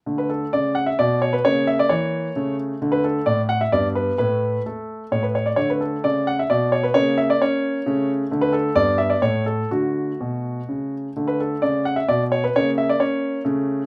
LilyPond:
<<
  \new Staff \with { instrumentName = "Grand piano" } { \time 3/4 \key d \major \tempo 4 = 131 r16 b'16 a'8 d''8 fis''16 e''16 d''8 cis''16 b'16 | cis''8 e''16 d''16 cis''4. r8 | r16 b'16 a'8 d''8 fis''16 e''16 d''8 b'8 | b'4 a'4 cis''16 b'16 cis''16 d''16 |
cis''16 b'16 a'8 d''8 fis''16 e''16 d''8 cis''16 b'16 | cis''8 e''16 d''16 cis''4. r8 | r16 b'16 a'8 d''8 e''16 d''16 cis''8 a'8 | fis'2~ fis'8 r8 |
r16 b'16 a'8 d''8 fis''16 e''16 d''8 cis''16 b'16 | cis''8 e''16 d''16 cis''4. r8 | }
  \new Staff \with { instrumentName = "Grand piano" } { \clef bass \time 3/4 \key d \major << { a2. | ais2 a4 | a2 b4 | a2 a4 |
a2. | ais2 a4 | a4 b4 a4 | a2. |
a2. | ais2 a4 | } \\ { d4 cis4 b,4 | cis4 e4 cis4 | d4 a,4 g,4 | a,4 a4 a,4 |
d4 cis4 b,4 | cis4 cis'4 cis4 | d4 g,4 a,4 | d4 b,4 cis4 |
d4 cis4 b,4 | cis4 cis'4 cis4 | } >> }
>>